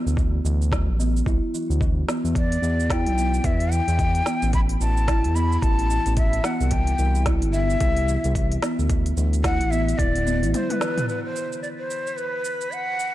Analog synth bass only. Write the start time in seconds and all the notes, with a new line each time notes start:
0.06 D2
0.44 D2
0.88 A1
1.26 C2
1.70 D2
2.24 E2
2.62 E2
3.06 B1
3.44 E2
3.88 E2
4.42 A1
4.80 A1
5.24 E2
5.62 A1
6.06 A1
6.61 C2
6.99 C2
7.42 G1
7.81 C2
8.24 C2
8.79 D2
9.17 D2
9.60 A1
9.98 D1
10.42 A1